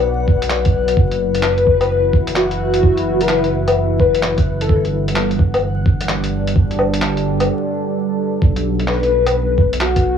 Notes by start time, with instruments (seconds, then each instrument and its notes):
Already playing: detuned saw bass B1, ambient pad B3 F#4 B4 C#5 D5, synth texture F#5
0.28 kick
0.42 closed hi-hat
0.50 clap
0.65 kick, closed hi-hat
0.88 closed hi-hat
0.97 detuned saw bass F#1, ambient pad E4, kick
1.12 closed hi-hat
1.35 closed hi-hat
1.43 digital synth lead B4, clap
1.58 closed hi-hat
1.67 kick
1.81 closed hi-hat, low woodblock
2.13 kick
2.27 closed hi-hat
2.36 digital synth lead F#4, clap
2.51 closed hi-hat
2.59 digital synth lead F#4
2.74 closed hi-hat
2.83 kick
2.98 closed hi-hat
3.21 digital synth lead B4, closed hi-hat
3.29 clap
3.44 closed hi-hat
3.68 closed hi-hat, low woodblock
4.00 digital synth lead B4, kick
4.15 closed hi-hat
4.23 clap
4.38 kick, closed hi-hat
4.61 digital synth lead A4, closed hi-hat
4.69 detuned saw bass G1, ambient pad G3, kick
4.85 closed hi-hat
5.02 ambient pad D4
5.08 closed hi-hat
5.16 clap
5.31 closed hi-hat
5.39 kick
5.54 ambient pad A4, closed hi-hat, low woodblock
5.86 kick
6.01 closed hi-hat
6.09 clap
6.24 closed hi-hat
6.47 closed hi-hat
6.56 kick
6.71 closed hi-hat
6.79 low woodblock
6.94 closed hi-hat
7.02 clap
7.17 closed hi-hat
7.40 closed hi-hat, low woodblock
8.41 detuned saw bass B1, ambient pad B3, kick
8.56 closed hi-hat
8.72 ambient pad F#4
8.80 closed hi-hat
8.88 digital synth lead B4, clap
9.01 ambient pad D5, closed hi-hat
9.21 ambient pad C#5
9.27 closed hi-hat, low woodblock
9.58 kick
9.73 closed hi-hat
9.81 digital synth lead F#4, clap
9.96 kick, closed hi-hat